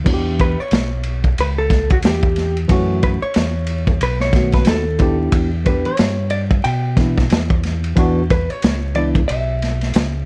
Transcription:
0.04 0.56 E2 medium
0.04 0.53 E3 medium
0.04 0.54 B3 medium
0.04 0.54 D4 medium
0.04 0.14 F#4 medium
0.04 kick loud
0.04 crash medium
0.14 0.58 G4 medium
0.39 0.60 B4 medium
0.39 kick medium
0.39 ride medium
0.58 1.40 C#5 loud
0.58 muted fingered electric bass stroke soft
0.71 1.34 B1 medium
0.71 snare medium
0.71 hi-hat pedal medium
0.71 ride medium
1.03 ride medium
1.24 kick medium
1.24 ride soft
1.38 2.00 C#2 medium
1.38 1.46 B4 medium
1.38 ride medium
1.58 1.91 A4 medium
1.70 kick medium
1.70 snare soft
1.70 ride soft
1.90 1.97 F#4 medium
1.90 kick medium
1.90 ride soft
2.02 2.66 E2 medium
2.02 2.57 G4 medium
2.02 snare medium
2.02 hi-hat pedal medium
2.02 ride medium
2.23 kick loud
2.36 snare soft
2.36 ride medium
2.57 ride soft
2.68 3.19 F#2 medium
2.68 3.17 E3 medium
2.68 3.17 A3 medium
2.68 3.18 C#4 medium
2.68 3.19 F#4 loud
2.68 kick loud
2.68 ride medium
3.03 3.09 B4 loud
3.03 kick medium
3.03 ride medium
3.22 3.98 C#5 loud
3.22 muted fingered electric bass stroke soft
3.34 3.98 E2 medium
3.34 snare medium
3.34 hi-hat pedal soft
3.34 ride medium
3.67 ride medium
3.87 kick medium
3.87 ride soft
4.01 4.64 B1 loud
4.01 4.21 B4 medium
4.01 ride medium
4.20 4.54 C#5 loud
4.20 snare soft
4.32 4.81 D#3 medium
4.32 4.82 A3 medium
4.32 4.83 B3 medium
4.32 4.83 F#4 medium
4.32 kick medium
4.32 snare soft
4.32 ride soft
4.52 4.68 B4 medium
4.52 kick medium
4.52 snare soft
4.52 ride soft
4.65 5.30 D#2 loud
4.65 5.16 A4 medium
4.65 snare loud
4.65 hi-hat pedal medium
4.65 ride medium
4.99 5.48 B3 medium
4.99 5.49 D4 medium
4.99 5.48 E4 medium
4.99 5.49 G4 medium
4.99 kick medium
4.99 ride medium
5.32 5.82 E2 loud
5.32 kick loud
5.32 ride medium
5.64 5.90 E3 medium
5.64 5.91 B3 medium
5.64 5.91 D4 medium
5.64 5.92 G4 medium
5.64 5.84 B4 medium
5.64 kick medium
5.64 ride medium
5.85 6.30 C#5 medium
5.85 muted fingered electric bass stroke soft
5.85 ride soft
5.97 6.62 G2 medium
5.97 snare medium
5.97 hi-hat pedal medium
5.97 ride medium
6.30 6.40 D5 medium
6.30 ride medium
6.51 kick medium
6.51 ride soft
6.64 7.28 B2 medium
6.64 7.59 G5 medium
6.64 ride medium
6.96 7.22 E3 medium
6.96 7.23 B3 medium
6.96 7.23 D4 soft
6.96 7.23 E4 medium
6.96 kick medium
6.96 snare soft
6.96 ride medium
7.18 kick medium
7.18 snare soft
7.30 7.94 E2 loud
7.30 snare loud
7.30 hi-hat pedal soft
7.30 ride medium
7.50 kick medium
7.63 snare soft
7.63 ride medium
7.84 ride soft
7.96 8.46 E2 medium
7.96 8.21 E3 medium
7.96 8.22 B3 medium
7.96 8.22 D4 medium
7.96 8.22 F#4 loud
7.96 kick loud
7.96 ride medium
8.30 8.50 B4 medium
8.30 kick medium
8.30 ride medium
8.50 8.95 C#5 medium
8.50 muted fingered electric bass stroke soft
8.50 ride soft
8.62 9.26 C#2 loud
8.62 snare loud
8.62 hi-hat pedal medium
8.62 ride medium
8.95 9.20 E3 medium
8.95 9.20 B3 medium
8.95 9.21 D4 medium
8.95 9.22 E4 medium
8.95 9.05 D5 medium
8.95 ride medium
9.15 kick medium
9.15 ride soft
9.28 9.92 B1 medium
9.28 10.23 E5 medium
9.28 ride medium
9.62 snare soft
9.62 ride medium
9.81 snare soft
9.81 ride soft
9.94 10.25 C#2 loud
9.94 snare medium
9.94 hi-hat pedal medium
9.94 ride medium

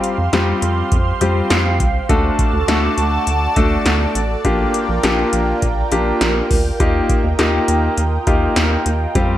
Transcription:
0.00 0.15 G3 medium
0.00 0.15 C4 medium
0.00 0.15 F4 medium
0.00 0.15 G4 medium
0.00 2.05 G4 medium
0.00 2.07 C5 medium
0.00 2.05 F5 medium
0.00 2.07 C6 medium
0.00 closed hi-hat medium
0.18 0.29 F2 loud
0.33 0.53 F2 loud
0.33 0.94 G3 medium
0.33 0.94 C4 medium
0.33 0.94 F4 medium
0.33 0.94 G4 medium
0.33 snare loud
0.33 closed hi-hat medium
0.62 0.83 F2 loud
0.62 closed hi-hat medium
0.92 1.12 F2 loud
0.92 kick loud
0.92 closed hi-hat medium
1.21 1.42 F2 loud
1.21 1.82 G3 medium
1.21 1.82 C4 medium
1.21 1.82 F4 medium
1.21 1.82 G4 medium
1.21 closed hi-hat medium
1.50 1.82 F2 loud
1.50 snare loud
1.50 closed hi-hat medium
1.80 2.01 C2 medium
1.80 kick medium
1.80 closed hi-hat medium
2.09 2.30 D2 loud
2.09 2.50 A3 medium
2.09 2.50 D4 medium
2.09 2.50 F#4 medium
2.09 4.42 F#4 medium
2.09 2.50 A4 medium
2.09 4.42 A4 medium
2.09 6.76 D5 medium
2.09 4.42 A5 medium
2.09 kick loud
2.09 closed hi-hat medium
2.39 kick loud
2.39 closed hi-hat medium
2.53 2.64 D2 loud
2.68 2.89 D2 loud
2.68 3.29 A3 medium
2.68 3.29 D4 medium
2.68 3.29 F#4 medium
2.68 3.29 A4 medium
2.68 snare loud
2.68 closed hi-hat medium
2.98 3.18 D2 loud
2.98 closed hi-hat medium
3.27 3.48 D2 loud
3.27 closed hi-hat medium
3.56 3.77 D2 medium
3.56 4.17 A3 medium
3.56 4.17 D4 medium
3.56 4.17 F#4 medium
3.56 4.17 A4 medium
3.56 kick loud
3.56 closed hi-hat medium
3.86 4.07 D2 loud
3.86 snare loud
3.86 closed hi-hat medium
4.15 4.36 A1 loud
4.15 closed hi-hat medium
4.45 4.65 A#1 loud
4.45 4.85 A#3 medium
4.45 4.85 D4 medium
4.45 4.85 F4 medium
4.45 9.38 F4 medium
4.45 4.85 G4 medium
4.45 6.78 A#4 medium
4.45 9.38 G5 medium
4.45 kick loud
4.45 closed hi-hat medium
4.74 closed hi-hat medium
4.89 4.99 A#1 loud
5.03 5.24 A#1 loud
5.03 5.64 A#3 medium
5.03 5.64 D4 medium
5.03 5.64 F4 medium
5.03 5.64 G4 loud
5.03 snare loud
5.03 closed hi-hat medium
5.33 5.54 A#1 loud
5.33 closed hi-hat medium
5.62 5.83 A#1 loud
5.62 kick loud
5.62 closed hi-hat medium
5.92 6.12 A#1 medium
5.92 6.53 A#3 medium
5.92 6.53 D4 medium
5.92 6.53 F4 medium
5.92 6.53 G4 medium
5.92 closed hi-hat medium
6.21 6.42 A#1 loud
6.21 snare loud
6.21 closed hi-hat medium
6.51 6.71 D2 medium
6.51 kick medium
6.51 open hi-hat medium
6.80 7.01 D#2 loud
6.80 7.21 A#3 medium
6.80 7.21 D#4 medium
6.80 7.21 F4 medium
6.80 7.21 G4 medium
6.80 9.13 A#4 medium
6.80 9.13 D#5 medium
6.80 kick loud
6.80 closed hi-hat medium
7.09 kick loud
7.09 closed hi-hat medium
7.24 7.34 D#2 loud
7.39 7.59 D#2 loud
7.39 8.00 A#3 medium
7.39 8.00 D#4 medium
7.39 8.00 F4 medium
7.39 8.00 G4 medium
7.39 snare loud
7.39 closed hi-hat medium
7.68 7.89 D#2 loud
7.68 closed hi-hat medium
7.98 8.18 D#2 loud
7.98 closed hi-hat medium
8.27 8.48 D#2 loud
8.27 8.88 A#3 medium
8.27 8.88 D#4 medium
8.27 8.88 F4 medium
8.27 8.88 G4 medium
8.27 kick loud
8.27 closed hi-hat medium
8.56 8.77 D#2 loud
8.56 snare loud
8.56 closed hi-hat medium
8.86 9.07 D#2 medium
8.86 closed hi-hat medium
9.15 9.36 F2 loud
9.15 9.38 G3 medium
9.15 9.38 C4 medium
9.15 9.38 F4 medium
9.15 9.38 G4 medium
9.15 9.38 C5 medium
9.15 kick loud
9.15 closed hi-hat medium

